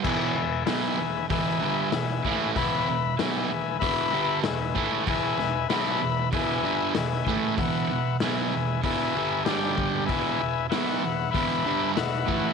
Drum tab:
CC |x-------|--------|--------|--------|
HH |--o-o-o-|o-o-o-o-|o-o-o-o-|o-o-o-o-|
SD |--o---o-|--o---o-|-oo---o-|--o---o-|
BD |o---o--o|o---o--o|o---o--o|o---o--o|

CC |--------|
HH |o-o-o-o-|
SD |--o---o-|
BD |o---o--o|